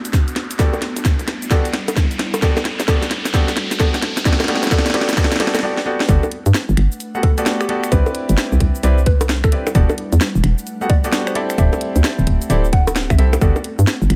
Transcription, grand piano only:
0.59 0.73 B3 medium
0.59 0.73 F#4 medium
0.59 0.73 G4 medium
0.59 0.73 A4 medium
0.59 0.73 D5 medium
1.51 1.64 B3 medium
1.51 1.64 F#4 medium
1.51 1.64 G4 medium
1.51 1.64 A4 medium
1.51 1.64 D5 medium
2.42 2.56 B3 medium
2.42 2.56 F#4 medium
2.42 2.56 G4 medium
2.42 2.56 A4 medium
2.42 2.56 D5 medium
2.88 3.02 B3 medium
2.88 3.02 F#4 medium
2.88 3.02 G4 medium
2.88 3.02 A4 medium
2.88 3.02 D5 medium
3.34 3.47 B3 medium
3.34 3.47 F#4 medium
3.34 3.47 G4 medium
3.34 3.47 A4 medium
3.34 3.47 D5 medium
3.80 3.93 B3 medium
3.80 3.93 F#4 medium
3.80 3.93 G4 medium
3.80 3.93 A4 medium
3.80 3.93 D5 loud
4.25 4.39 B3 medium
4.25 4.39 F#4 medium
4.25 4.39 G4 medium
4.25 4.39 A4 medium
4.25 4.39 D5 loud
4.48 4.62 B3 medium
4.48 4.62 F#4 medium
4.48 4.62 G4 medium
4.48 4.62 A4 medium
4.48 4.62 D5 medium
4.71 4.85 B3 medium
4.71 4.85 F#4 medium
4.71 4.85 G4 medium
4.71 4.85 A4 medium
4.71 4.85 D5 loud
4.94 5.08 B3 medium
4.94 5.08 F#4 medium
4.94 5.08 G4 medium
4.94 5.08 A4 medium
4.94 5.08 D5 loud
5.17 5.31 B3 medium
5.17 5.31 F#4 medium
5.17 5.31 G4 medium
5.17 5.31 A4 medium
5.17 5.31 D5 loud
5.40 5.53 B3 medium
5.40 5.53 F#4 medium
5.40 5.53 G4 medium
5.40 5.53 A4 medium
5.40 5.53 D5 loud
5.63 5.76 B3 medium
5.63 5.76 F#4 medium
5.63 5.76 G4 medium
5.63 5.76 A4 medium
5.63 5.76 D5 loud
5.86 5.99 B3 medium
5.86 5.99 F#4 medium
5.86 5.99 G4 medium
5.86 5.99 A4 medium
5.86 5.99 D5 loud
6.09 6.22 B3 medium
6.09 6.22 F#4 medium
6.09 6.22 G4 medium
6.09 6.22 A4 medium
6.09 6.22 D5 loud
7.15 7.23 B3 medium
7.15 7.23 F#4 medium
7.15 7.23 G4 medium
7.15 7.22 A4 medium
7.15 7.23 F#5 medium
7.38 7.67 B3 medium
7.38 7.67 F#4 medium
7.38 7.67 G4 medium
7.38 7.67 A4 medium
7.38 7.67 D5 loud
7.69 7.90 B3 medium
7.69 7.90 F#4 medium
7.69 7.90 G4 medium
7.69 7.90 A4 medium
7.69 7.90 D5 loud
7.92 8.81 C4 medium
7.92 8.81 E4 medium
7.92 8.81 G4 medium
7.92 8.81 B4 medium
7.92 8.81 D5 loud
8.83 8.97 C4 medium
8.83 8.97 E4 medium
8.83 8.97 G4 medium
8.83 8.97 B4 medium
8.83 8.97 D5 loud
9.52 9.66 C4 medium
9.52 9.66 E4 medium
9.52 9.66 G4 medium
9.52 9.66 B4 medium
9.52 9.66 D5 medium
9.75 9.89 B3 medium
9.75 9.89 F#4 medium
9.75 9.89 G4 medium
9.75 9.89 A4 medium
9.75 9.89 D5 loud
10.81 10.89 B3 medium
10.81 10.89 F#4 medium
10.81 10.89 G4 medium
10.81 10.89 A4 medium
10.81 10.89 F#5 medium
11.04 11.33 B3 medium
11.04 11.33 F#4 medium
11.04 11.33 G4 medium
11.04 11.33 A4 medium
11.04 11.33 D5 loud
11.35 11.56 C4 medium
11.35 11.56 E4 medium
11.35 11.56 G4 medium
11.35 11.56 A4 medium
11.35 11.56 D5 loud
11.58 12.48 C4 medium
11.58 12.48 E4 medium
11.58 12.48 G4 medium
11.58 12.48 A4 medium
11.58 12.48 D5 medium
12.50 12.63 C4 loud
12.50 12.63 E4 medium
12.50 12.63 G4 medium
12.50 12.63 A4 medium
12.50 12.63 D5 loud
13.19 13.32 C4 medium
13.19 13.32 E4 medium
13.19 13.32 G4 medium
13.19 13.32 A4 medium
13.19 13.32 E5 medium
13.41 13.55 B3 medium
13.41 13.55 F#4 medium
13.41 13.55 G4 medium
13.41 13.55 A4 medium
13.41 13.55 D5 medium

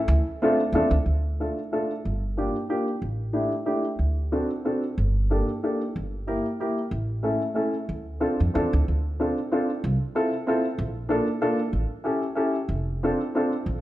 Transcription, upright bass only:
0.08 0.19 D2 loud
0.72 0.89 E2 medium
0.91 1.05 D2 medium
1.06 1.49 D2 medium
2.05 2.47 G1 medium
3.02 3.44 A1 medium
3.99 4.42 D2 medium
4.98 5.40 G1 medium
5.96 6.38 G1 medium
6.91 7.33 A1 medium
7.89 8.22 D2 medium
8.40 8.54 F2 medium
8.55 8.71 E2 medium
8.73 8.87 D2 medium
8.88 9.30 D2 medium
9.84 9.95 C2 medium
10.78 11.19 A#1 medium
11.73 11.84 A1 medium
12.69 13.11 F1 medium
13.66 13.77 A#1 medium

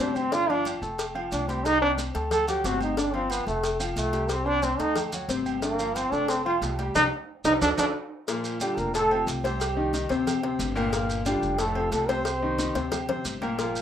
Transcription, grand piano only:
0.00 0.26 C3 medium
0.00 0.26 C4 medium
0.00 0.27 C5 medium
0.32 0.45 D3 medium
0.32 0.46 D4 medium
0.32 0.46 D5 medium
0.48 0.76 F3 medium
0.48 0.76 F4 medium
0.48 0.76 F5 medium
0.82 1.09 A3 medium
0.82 1.09 A4 medium
0.82 1.09 A5 medium
1.15 1.42 F3 medium
1.15 1.42 F4 medium
1.15 1.42 F5 medium
1.48 1.76 G3 medium
1.48 1.76 G4 medium
1.48 1.76 G5 medium
1.81 2.09 C4 medium
1.81 2.09 C5 medium
1.81 2.09 C6 medium
2.14 2.42 A3 medium
2.14 2.42 A4 medium
2.14 2.42 A5 medium
2.47 2.61 F#3 medium
2.47 2.61 F#4 medium
2.47 2.61 F#5 medium
2.65 2.92 C3 medium
2.65 2.92 C4 medium
2.65 2.92 C5 medium
2.97 3.11 D3 medium
2.97 3.11 D4 medium
2.97 3.11 D5 medium
3.14 3.41 F3 medium
3.14 3.41 F4 medium
3.14 3.42 F5 medium
3.47 3.74 A3 medium
3.47 3.74 A4 medium
3.47 3.75 A5 medium
3.80 4.07 F3 medium
3.80 4.07 F4 medium
3.80 4.08 F5 medium
4.13 4.40 G3 medium
4.13 4.40 G4 medium
4.13 4.41 G5 medium
4.45 4.73 C4 medium
4.45 4.73 C5 medium
4.45 4.73 C6 medium
4.79 5.07 A3 medium
4.79 5.07 A4 medium
4.79 5.07 A5 medium
5.13 5.27 F#3 medium
5.13 5.27 F#4 medium
5.13 5.27 F#5 medium
5.29 5.56 C3 medium
5.29 5.57 C4 medium
5.29 5.57 C5 medium
5.62 5.76 D3 medium
5.62 5.76 D4 medium
5.62 5.76 D5 medium
5.79 6.06 F3 medium
5.79 6.06 F4 medium
5.79 6.07 F5 medium
6.12 6.39 A3 medium
6.12 6.40 A4 medium
6.12 6.40 A5 medium
6.45 6.73 F3 medium
6.45 6.73 F4 medium
6.45 6.73 F5 medium
6.79 6.92 G3 medium
6.79 6.93 G4 medium
6.79 6.93 G5 medium
6.95 7.06 D4 loud
6.95 7.06 D#4 medium
6.95 7.06 G4 medium
7.45 7.56 D4 medium
7.45 7.56 D#4 medium
7.45 7.56 G4 medium
7.61 7.72 D4 loud
7.61 7.72 F#4 loud
7.61 7.72 A4 medium
7.78 7.89 D4 medium
7.78 7.89 F#4 medium
7.78 7.89 A4 medium
8.28 8.55 A#2 medium
8.28 8.55 A#3 medium
8.28 8.55 A#4 medium
8.61 8.88 D3 medium
8.61 8.88 D4 medium
8.61 8.89 F4 medium
8.94 9.07 A2 medium
8.94 9.08 A3 medium
8.94 9.08 A4 medium
9.11 9.38 C3 medium
9.11 9.38 C4 medium
9.11 9.38 F4 medium
9.44 9.71 C3 loud
9.44 9.71 C4 medium
9.44 9.71 C5 loud
9.76 9.90 D#3 medium
9.76 9.90 D#4 medium
9.76 9.90 G4 medium
9.93 10.07 D#3 medium
9.93 10.07 D#4 medium
9.93 10.07 G4 medium
10.10 10.37 C3 medium
10.10 10.37 C4 medium
10.10 10.37 C5 medium
10.43 10.70 C3 medium
10.43 10.70 C4 medium
10.43 10.71 C5 medium
10.75 10.89 A#2 loud
10.75 10.90 A#3 loud
10.75 10.90 A#4 loud
10.92 11.20 A#2 medium
10.92 11.20 A#3 medium
10.92 11.20 A#4 medium
11.25 11.53 D3 medium
11.25 11.53 D4 medium
11.25 11.53 F4 medium
11.59 11.73 A2 medium
11.59 11.73 A3 medium
11.59 11.73 A4 medium
11.75 12.03 C3 medium
11.75 12.03 C4 medium
11.75 12.03 F4 medium
12.08 12.36 C3 medium
12.08 12.36 C4 medium
12.08 12.36 C5 loud
12.42 12.56 D#3 medium
12.42 12.56 D#4 medium
12.42 12.56 G4 medium
12.59 12.72 D#3 medium
12.59 12.72 D#4 medium
12.59 12.73 G4 medium
12.75 13.03 C3 medium
12.75 13.03 C4 medium
12.75 13.03 C5 medium
13.09 13.36 C3 medium
13.09 13.36 C4 medium
13.09 13.36 C5 medium
13.42 13.55 A#2 medium
13.42 13.56 A#3 medium
13.42 13.56 A#4 medium
13.58 13.82 A#2 medium
13.58 13.82 A#3 medium
13.58 13.82 A#4 medium

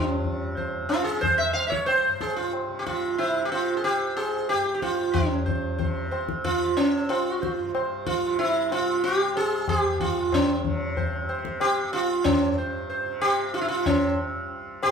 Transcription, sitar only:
0.00 0.92 C#4 medium
0.57 0.88 C5 soft
0.89 1.04 F4 medium
1.04 1.22 G#4 medium
1.21 1.39 C5 medium
1.38 1.53 E5 medium
1.53 1.66 F5 medium
1.67 1.86 C#5 medium
1.67 1.71 E5 medium
1.86 2.21 C5 medium
2.21 2.36 G#4 medium
2.36 2.52 F4 medium
2.79 2.86 G4 medium
2.86 3.18 F4 medium
3.18 3.45 E4 medium
3.18 3.49 C5 soft
3.45 3.51 G4 medium
3.52 3.76 F4 medium
3.52 3.82 C5 soft
3.77 3.84 G#4 medium
3.84 4.16 G4 medium
3.84 4.15 C5 soft
4.17 4.49 G#4 medium
4.17 4.47 C5 soft
4.49 4.73 G4 medium
4.49 4.74 C5 soft
4.75 4.82 G4 medium
4.82 5.16 F4 medium
4.82 5.12 C5 soft
5.14 6.08 C#4 medium
5.46 5.77 C5 soft
5.79 6.09 C5 soft
6.11 6.42 C5 soft
6.44 6.75 F4 medium
6.77 7.10 C#4 medium
7.09 7.70 F4 medium
7.42 7.72 C5 soft
7.75 8.05 C5 soft
8.06 8.38 F4 medium
8.39 8.72 E4 medium
8.72 9.03 F4 medium
9.04 9.36 G4 loud
9.37 9.69 G#4 loud
9.69 10.00 G4 loud
10.01 10.34 F4 medium
10.34 11.26 C#4 medium
10.97 11.27 C5 soft
11.29 11.59 C5 soft
11.61 11.93 G4 loud
11.93 12.26 F4 medium
12.24 12.55 C#4 medium
12.58 12.88 C5 soft
12.90 13.19 C5 soft
13.21 13.54 G4 loud
13.54 13.61 F4 medium
13.61 13.68 E4 medium
13.68 13.87 F4 medium
13.86 14.16 C#4 medium
14.83 14.91 G4 loud

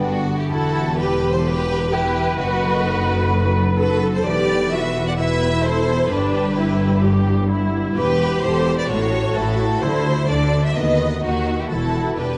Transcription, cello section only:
0.00 0.26 G2 medium
0.50 2.35 E2 medium
2.39 4.26 F#2 medium
4.26 6.08 E2 medium
6.12 7.97 G2 medium
7.97 8.38 E2 medium
8.44 8.84 E2 medium
8.90 9.31 A2 medium
9.37 9.77 A2 medium
9.83 10.24 D3 medium
10.30 10.71 D3 medium
10.77 11.18 D#3 medium
11.24 11.65 D#3 medium
11.71 12.12 E2 soft
12.18 12.38 E2 soft

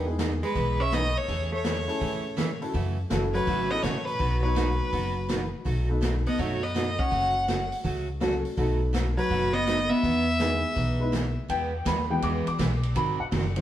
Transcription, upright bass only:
0.00 0.41 E2 medium
0.56 1.14 B1 medium
1.29 1.87 E2 medium
2.02 2.60 A2 medium
2.75 3.03 F#2 medium
3.11 3.42 F#1 medium
3.47 3.78 G#1 medium
3.83 4.14 A1 medium
4.20 4.78 B1 medium
4.93 5.51 F#1 medium
5.66 6.24 B1 medium
6.39 6.97 F#2 medium
7.12 7.70 F#1 medium
7.85 8.43 C#2 medium
8.58 9.16 B1 medium
9.31 9.89 F#1 medium
10.04 10.62 E2 medium
10.76 11.35 B1 medium
11.49 11.85 E2 medium
11.86 12.22 D#2 medium
12.23 12.45 E2 medium
12.47 muted upright bass stroke soft
12.59 12.95 B1 medium
12.96 13.18 G#1 medium
13.20 muted upright bass stroke soft
13.32 13.61 F#1 loud

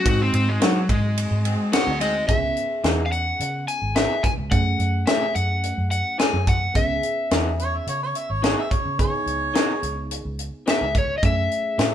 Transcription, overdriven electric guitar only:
0.08 0.21 F#4 medium
0.22 0.34 C4 loud
0.35 0.48 C4 loud
0.49 0.63 G#3 medium
0.63 0.89 F#3 loud
0.90 2.25 G#3 loud
1.73 1.99 F#5 loud
2.01 2.27 D#5 medium
2.28 3.05 E5 medium
3.06 3.11 F5 medium
3.12 3.68 F#5 loud
3.68 3.97 G#5 medium
3.96 4.25 E5 medium
4.23 4.31 G#5 medium
4.51 5.09 F#5 medium
5.07 5.34 E5 medium
5.35 5.90 F#5 medium
5.91 6.17 F#5 medium
6.20 6.48 G#5 medium
6.49 6.74 F#5 medium
6.76 8.39 E5 medium
10.70 10.97 E5 medium
10.98 11.17 C#5 medium
11.18 11.23 D#5 medium
11.25 11.95 E5 medium

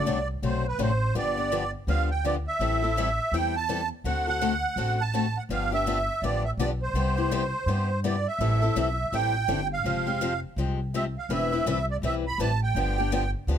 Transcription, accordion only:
0.00 0.28 D5 medium
0.45 0.67 C5 medium
0.68 0.81 B4 medium
0.82 1.14 C5 medium
1.18 1.71 D5 medium
1.89 2.09 F5 medium
2.11 2.25 G5 medium
2.25 2.35 D5 medium
2.47 3.36 E5 medium
3.34 3.56 G5 medium
3.56 3.89 A5 medium
4.06 4.26 F#5 medium
4.29 5.02 F#5 loud
5.01 5.38 A5 medium
5.37 5.43 F#5 medium
5.52 5.71 F5 medium
5.73 6.24 E5 medium
6.23 6.43 D5 medium
6.44 6.51 E5 medium
6.59 6.69 D5 medium
6.82 8.00 C5 medium
8.05 8.27 D5 medium
8.27 9.16 E5 medium
9.14 9.68 G5 loud
9.73 10.40 F5 medium
10.95 11.05 E5 medium
11.18 11.31 F5 medium
11.33 11.86 E5 medium
11.91 11.97 D5 medium
12.05 12.15 E5 medium
12.27 12.39 B5 loud
12.41 12.61 A5 medium
12.63 13.31 G5 medium

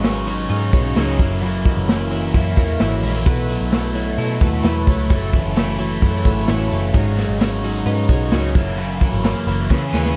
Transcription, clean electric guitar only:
0.00 1.19 G#2 medium
0.00 0.27 F#3 medium
0.04 0.73 C#4 medium
0.27 0.96 F#3 medium
0.50 1.24 D#4 medium
0.73 0.85 B3 medium
0.85 1.24 C#4 medium
0.96 1.65 F#3 medium
1.20 1.41 F#2 medium
1.42 3.26 F#2 medium
1.65 2.11 E3 medium
1.89 2.56 A#3 medium
2.11 2.80 E3 medium
2.34 3.52 E4 medium
2.57 3.02 A#3 medium
2.80 3.49 E3 medium
3.03 3.14 G#3 medium
3.14 3.31 A#3 medium
3.26 5.10 B2 medium
3.49 3.95 F#3 medium
3.72 4.41 A3 medium
3.95 4.64 F#3 medium
4.18 5.15 E4 medium
4.41 4.87 A3 medium
4.64 5.32 F#3 medium
4.87 5.15 A3 medium
5.10 6.94 F#2 medium
5.33 5.78 E3 medium
5.56 6.24 A3 medium
5.79 6.47 E3 medium
6.02 6.99 E4 medium
6.25 6.70 A3 medium
6.48 6.99 E3 medium
6.71 6.99 A3 medium
6.94 8.55 G#2 medium
7.17 7.63 F#3 medium
7.40 8.09 C#4 medium
7.63 8.31 F#3 medium
7.86 8.60 D#4 medium
8.09 9.23 C#4 medium
8.32 8.60 F#3 medium
8.55 8.77 F#2 medium
8.78 9.75 F#2 medium
9.01 9.47 E3 medium
9.24 9.75 A#3 medium
9.47 10.16 E3 medium
9.70 10.16 C#3 medium
9.93 10.16 C#4 medium

